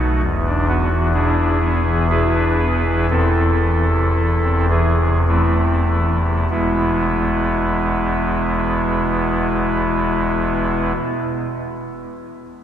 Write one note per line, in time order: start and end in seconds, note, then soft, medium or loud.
0.00 0.21 B1 medium
0.00 0.21 B2 medium
0.00 0.20 A3 medium
0.00 0.21 D#4 medium
0.00 0.21 F#4 loud
0.23 3.05 E1 medium
0.23 3.05 E2 medium
0.46 0.67 D4 medium
0.68 0.89 B3 medium
0.68 1.08 F#4 loud
0.91 1.12 E3 medium
1.13 1.35 B2 medium
1.13 1.35 D4 medium
1.13 2.07 E4 medium
1.13 2.06 G#4 loud
1.37 1.58 D4 medium
1.61 1.82 B3 medium
1.85 2.07 E3 medium
2.09 2.32 B2 medium
2.09 3.07 E4 loud
2.09 3.07 G#4 loud
2.09 3.07 B4 loud
2.35 2.57 D4 medium
2.60 2.82 B3 medium
2.85 3.06 E3 medium
3.10 6.45 E1 medium
3.10 6.45 E2 medium
3.10 3.34 C4 loud
3.10 4.66 E4 loud
3.10 4.65 A4 loud
3.36 3.59 C4 medium
3.61 3.84 E3 medium
3.88 4.12 C3 medium
4.15 4.39 E3 medium
4.42 4.67 C4 medium
4.70 4.95 E3 medium
4.70 5.19 G#4 loud
4.99 5.24 C3 medium
5.28 5.54 E3 medium
5.28 6.46 A3 medium
5.28 5.56 C4 medium
5.28 6.46 E4 medium
5.58 5.84 C4 medium
5.88 6.15 E3 medium
6.19 6.45 C3 soft
6.50 10.92 E1 medium
6.50 10.92 E2 medium
6.50 10.93 B2 medium
6.50 10.93 G#3 medium
6.50 10.92 B3 medium
6.50 10.93 E4 medium